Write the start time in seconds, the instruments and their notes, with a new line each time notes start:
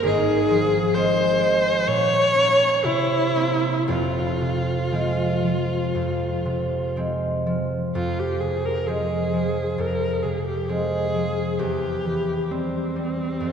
Already playing: harp C4
0.03 harp G#1 G#2, viola G#4
0.50 harp F3
0.95 harp G#3 C4 F4, viola C5
1.40 harp G#3
1.87 harp A#2, viola C#5
2.34 harp A#3 C#4
2.84 harp C3, viola E4
3.36 harp A#3 C4
3.88 harp F1 F2, viola F4
4.41 harp C3
4.91 harp F3 G#3 C4
5.43 harp F3
5.95 harp F2
6.45 harp C3
6.96 harp F3 G#3 C4
7.46 harp F3
7.95 harp F2, viola F4
8.19 viola G4
8.40 harp C3, viola G#4
8.65 viola A#4
8.86 harp F3 G#3 C4, viola G#4
9.33 harp F3
9.78 harp F2, viola A#4
10.23 harp C3, viola G#4
10.46 viola G4
10.68 harp F3 G#3 C4, viola G#4
11.15 harp F3
11.59 harp E2, viola G4
12.05 harp E3
12.50 harp G3 C4, viola C4
12.96 harp G3
13.40 harp F2